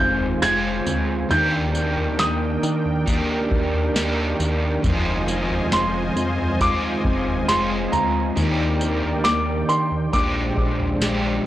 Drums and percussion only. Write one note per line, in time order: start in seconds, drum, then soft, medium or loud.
0.20 floor tom medium
0.42 snare loud
0.42 tambourine loud
0.86 floor tom medium
0.86 tambourine medium
1.31 floor tom loud
1.31 tambourine medium
1.75 tambourine medium
1.97 floor tom medium
2.19 snare loud
2.19 tambourine medium
2.63 tambourine medium
2.85 floor tom medium
3.07 kick loud
3.07 floor tom medium
3.07 tambourine medium
3.51 kick medium
3.74 floor tom medium
3.96 snare loud
3.96 tambourine loud
4.40 floor tom medium
4.40 tambourine medium
4.84 kick loud
4.84 floor tom loud
4.84 tambourine medium
5.28 tambourine medium
5.50 floor tom medium
5.72 snare loud
5.72 tambourine medium
6.17 tambourine medium
6.39 floor tom medium
6.61 kick medium
6.61 floor tom medium
6.61 tambourine medium
7.04 kick medium
7.27 floor tom medium
7.49 snare loud
7.49 tambourine loud
7.93 floor tom medium
7.93 tambourine medium
8.37 floor tom loud
8.37 tambourine medium
8.81 tambourine medium
9.03 floor tom medium
9.25 snare loud
9.25 tambourine medium
9.69 tambourine medium
9.91 floor tom medium
10.13 kick medium
10.13 floor tom medium
10.13 tambourine medium
10.57 kick medium
10.80 floor tom medium
11.02 snare loud
11.02 tambourine loud